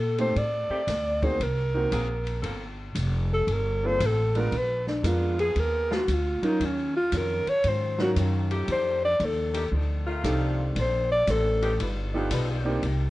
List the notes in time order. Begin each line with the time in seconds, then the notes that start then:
Already playing: A#2 A4
0.18 A3 C4 D#4 G4 A4 C5, ride
0.36 A2 D5, kick, ride
0.69 D#3 A3 C4 G4, muted upright bass stroke
0.87 D2, kick, snare, hi-hat pedal, ride
1.22 A#3 C4 D#4 F#4 G#4 C5, kick, ride
1.40 C2 A#4, kick, ride
1.74 A#3 C4 D#4 F#4 A#4
1.92 A#1 F#3 A#3 C4 G#4, kick, hi-hat pedal, ride
2.27 ride
2.42 G1 F3 A#3 C4 A4, kick, ride
2.95 F1, kick, hi-hat pedal, ride
3.34 A4
3.48 G1, kick, ride
3.53 A#4
3.83 A#3 C4 D4 F4 A4 C5
3.98 A1 F3 A#3 C4 C5, kick, hi-hat pedal, ride
4.05 A4
4.34 G#3 B3 D4 F4 A#4, ride
4.52 A#1, kick, ride
4.57 B4
4.87 D4, snare
5.03 F2 G#3 B3 D4 F4 A#4, kick, hi-hat pedal, ride
5.07 F4
5.38 D3 A#3 B3 G#4, ride
5.56 D#2, kick, ride
5.60 A#4
5.91 D3 A#3 B3 F4 F#4, snare
6.08 D2, kick, hi-hat pedal, ride
6.13 F4
6.42 F#3 C#4 D#4 F4 A#4, muted upright bass stroke, ride
6.60 D#2 D#3 F#3 C#4 F4, kick, ride
6.65 C#4
6.96 F4
7.12 F2 D#3 F#3 C#4 F4, kick, hi-hat pedal, ride
7.17 A#4
7.46 C#5, muted upright bass stroke, ride
7.64 G#2 D#3 F#3, kick, ride
7.68 C#4 F4 C5
7.99 F#3 C#4 D#4 F4 F#4 A#4, snare
8.16 F#2 D#3 F#3 C#4 F4, kick, hi-hat pedal, ride
8.51 D#3 A3 G4, ride
8.68 F2 F3 D#4 A4 D5, kick, ride
8.72 C5
9.05 D5
9.20 D#2 F3 D#4 A4, kick, hi-hat pedal, ride
9.25 A4 D5
9.54 D#3 A3 D4 G4, ride
9.72 D2 F3 D#4 A4, kick
9.76 D5
10.06 D#3 A3 F4
10.24 C2 F3 G3 C4 D4 D#4 A4 D5, kick, hi-hat pedal, ride
10.75 A#1 A#3 D4 A4 C5, kick, ride
10.80 C5
11.11 D5
11.27 A1 A#3 D4 A4 C5, kick, hi-hat pedal, ride
11.62 F3 B3 D#4 G4, ride
11.79 G1 G3 D#4 F4 B4, kick, ride
12.14 F3 B3 D4 D#4 F4 G4 A4
12.30 B1 G3 D#4 F4 B4, kick, hi-hat pedal, ride
12.64 A#3 C4 D4 D#4 G4
12.82 C2 C3 A#3 D#4 G4, kick, ride